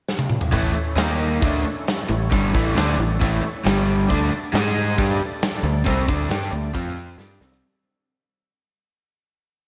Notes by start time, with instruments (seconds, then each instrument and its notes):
0.09 snare
0.19 high tom
0.30 mid tom
0.41 floor tom
0.52 picked electric bass A1, overdriven electric guitar A2 E3 A3, tonewheel organ C#4 E4 A4 C#5, kick, open hi-hat
0.75 muted overdriven electric guitar stroke, open hi-hat
0.96 picked electric bass D#2, overdriven electric guitar D#3 A#3 D#4, tonewheel organ A#3 D#4 A#4 D#5, snare, open hi-hat
1.20 open hi-hat
1.42 picked electric bass D2, overdriven electric guitar D3 A3 D4, tonewheel organ C#4 E4 A4 C#5, kick, open hi-hat
1.64 muted picked electric bass stroke, muted overdriven electric guitar stroke, open hi-hat
1.88 snare, open hi-hat
2.09 picked electric bass A1, overdriven electric guitar A2 E3, open hi-hat
2.32 picked electric bass G1, overdriven electric guitar G2 D3 G3, kick, open hi-hat
2.54 picked electric bass A1, overdriven electric guitar A2 E3 A3, kick, open hi-hat
2.76 picked electric bass D2, overdriven electric guitar D3 A3 D4, snare, open hi-hat
2.98 picked electric bass A1, overdriven electric guitar A2 E3, open hi-hat
3.21 picked electric bass A1, overdriven electric guitar A2 E3 A3, kick, open hi-hat
3.43 muted overdriven electric guitar stroke, open hi-hat
3.65 picked electric bass G1, overdriven electric guitar G2 D3 G3, tonewheel organ G3 D4 G4 D5, snare, open hi-hat
3.88 open hi-hat
4.09 picked electric bass D2, overdriven electric guitar D3 A3 D4, tonewheel organ A3 D4 A4 D5, kick, open hi-hat
4.33 muted overdriven electric guitar stroke, open hi-hat
4.54 picked electric bass G#2, tonewheel organ G#3 D#4 G#4 D#5, overdriven electric guitar G#3 D#4 G#4, snare, open hi-hat
4.77 open hi-hat
4.97 picked electric bass G2, overdriven electric guitar G3 D4 G4, tonewheel organ A3 D4 A4 D5, kick, open hi-hat
5.20 muted picked electric bass stroke, muted overdriven electric guitar stroke, open hi-hat
5.42 snare, open hi-hat
5.63 picked electric bass D2, overdriven electric guitar D3 A3, open hi-hat
5.86 picked electric bass C2, overdriven electric guitar C3 G3 C4, kick, open hi-hat
6.08 picked electric bass D2, overdriven electric guitar D3 A3 D4, kick, open hi-hat
6.29 picked electric bass G2, overdriven electric guitar G3 D4 G4, snare, open hi-hat
6.52 picked electric bass D2, overdriven electric guitar D3 A3, open hi-hat
6.74 picked electric bass F2, overdriven electric guitar F3 C4 F4, tonewheel organ C4 F4 C5 F5, kick, open hi-hat
6.97 open hi-hat
7.18 picked electric bass G2, overdriven electric guitar G3 D4 G4, tonewheel organ A3 D4 A4 D5, snare
7.41 picked electric bass C2, overdriven electric guitar C3 G3 C4, snare
7.52 snare